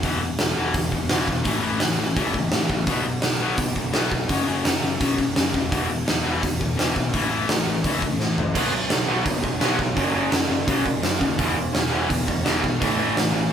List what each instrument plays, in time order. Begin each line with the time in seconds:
0.02 picked electric bass E1, distorted electric guitar E2 B2 E3, kick, open hi-hat
0.21 picked electric bass E1, distorted electric guitar E2 B2
0.39 picked electric bass E1, distorted electric guitar E2 B2, snare, open hi-hat
0.56 picked electric bass E1, distorted electric guitar E2 B2 E3
0.73 distorted electric guitar E2 B2, picked electric bass E2, kick, open hi-hat
0.92 picked electric bass E1, distorted electric guitar E2 B2, kick
1.09 picked electric bass E1, distorted electric guitar E2 B2 E3, snare, open hi-hat
1.27 picked electric bass E1, distorted electric guitar E2 B2, kick
1.43 picked electric bass A1, distorted electric guitar A2 E3 A3, kick, open hi-hat
1.62 picked electric bass A1, distorted electric guitar A2 E3 A3
1.80 picked electric bass A1, distorted electric guitar A2 E3, snare, open hi-hat
1.98 picked electric bass A1, distorted electric guitar A2 E3
2.16 picked electric bass C#2, distorted electric guitar A2 E3 A3, kick, open hi-hat
2.34 distorted electric guitar A2 E3, kick
2.52 distorted electric guitar A2 E3, picked electric bass A2, snare, open hi-hat
2.70 picked electric bass A1, distorted electric guitar A2 E3, kick
2.87 picked electric bass B1, distorted electric guitar B2 F#3 B3, kick, open hi-hat
3.05 picked electric bass B1, distorted electric guitar B2 F#3
3.22 picked electric bass B1, distorted electric guitar B2 F#3, snare, open hi-hat
3.40 picked electric bass B1, distorted electric guitar B2 F#3 B3
3.57 distorted electric guitar B2 F#3, picked electric bass B2, kick, open hi-hat
3.76 picked electric bass B1, distorted electric guitar B2 F#3, kick
3.92 picked electric bass B1, distorted electric guitar B2 F#3 B3, snare, open hi-hat
4.11 picked electric bass B1, distorted electric guitar B2 F#3, kick
4.28 picked electric bass F#1, distorted electric guitar F#2 C#3 F#3, kick, open hi-hat
4.46 picked electric bass F#1, distorted electric guitar F#2 C#3 F#3
4.65 picked electric bass F#1, distorted electric guitar F#2 C#3, snare, open hi-hat
4.82 picked electric bass F#1, distorted electric guitar F#2 C#3
5.00 picked electric bass B1, distorted electric guitar F#2 C#3 F#3, kick, open hi-hat
5.18 distorted electric guitar F#2 C#3, kick
5.36 distorted electric guitar F#2 C#3, picked electric bass F#2, snare, open hi-hat
5.54 picked electric bass E1, distorted electric guitar F#2 C#3, kick
5.71 picked electric bass E1, distorted electric guitar E2 B2 E3, kick, open hi-hat
5.89 picked electric bass E1, distorted electric guitar E2 B2
6.06 picked electric bass E1, distorted electric guitar E2 B2, snare, open hi-hat
6.24 picked electric bass E1, distorted electric guitar E2 B2 E3
6.43 distorted electric guitar E2 B2, picked electric bass E2, kick, open hi-hat
6.59 picked electric bass E1, distorted electric guitar E2 B2, kick
6.77 picked electric bass E1, distorted electric guitar E2 B2 E3, snare, open hi-hat
6.94 picked electric bass B1, distorted electric guitar E2 B2, kick
7.12 picked electric bass A1, distorted electric guitar A2 E3 A3, kick, open hi-hat
7.30 picked electric bass A1, distorted electric guitar A2 E3 A3
7.49 picked electric bass A1, distorted electric guitar A2 E3, snare, open hi-hat
7.67 picked electric bass A1, distorted electric guitar A2 E3
7.84 picked electric bass C#2, distorted electric guitar A2 E3 A3, kick, open hi-hat
8.02 distorted electric guitar A2 E3, kick
8.20 picked electric bass A2, distorted electric guitar A2 E3, snare
8.38 picked electric bass F#1, distorted electric guitar A2 E3, floor tom
8.55 picked electric bass B1, distorted electric guitar B2 F#3 B3, kick, open hi-hat, crash
8.72 picked electric bass B1, distorted electric guitar B2 F#3
8.90 picked electric bass B1, distorted electric guitar B2 F#3, snare, open hi-hat
9.08 picked electric bass B1, distorted electric guitar B2 F#3 B3
9.25 distorted electric guitar B2 F#3, picked electric bass B2, kick, open hi-hat
9.42 picked electric bass B1, distorted electric guitar B2 F#3, kick
9.60 picked electric bass B1, distorted electric guitar B2 F#3 B3, snare, open hi-hat
9.78 picked electric bass B1, distorted electric guitar B2 F#3, kick
9.96 picked electric bass F#1, distorted electric guitar F#2 C#3 F#3, kick, open hi-hat
10.13 picked electric bass F#1, distorted electric guitar F#2 C#3 F#3
10.32 picked electric bass F#1, distorted electric guitar F#2 C#3, snare, open hi-hat
10.49 picked electric bass F#1, distorted electric guitar F#2 C#3
10.67 picked electric bass B1, distorted electric guitar F#2 C#3 F#3, kick, open hi-hat
10.85 distorted electric guitar F#2 C#3, kick
11.02 distorted electric guitar F#2 C#3, picked electric bass F#2, snare, open hi-hat
11.20 picked electric bass D#2, distorted electric guitar F#2 C#3, kick
11.38 picked electric bass E1, distorted electric guitar E2 B2 E3, kick, open hi-hat
11.55 picked electric bass E1, distorted electric guitar E2 B2
11.73 picked electric bass E1, distorted electric guitar E2 B2, snare, open hi-hat
11.90 picked electric bass E1, distorted electric guitar E2 B2 E3
12.08 distorted electric guitar E2 B2, picked electric bass E2, kick, open hi-hat
12.26 picked electric bass E1, distorted electric guitar E2 B2, kick
12.44 picked electric bass E1, distorted electric guitar E2 B2 E3, snare, open hi-hat
12.62 picked electric bass B1, distorted electric guitar E2 B2, kick
12.80 picked electric bass A1, distorted electric guitar A2 E3 A3, kick, open hi-hat
12.96 picked electric bass A1, distorted electric guitar A2 E3 A3
13.16 picked electric bass A1, distorted electric guitar A2 E3, snare, open hi-hat
13.33 picked electric bass A1, distorted electric guitar A2 E3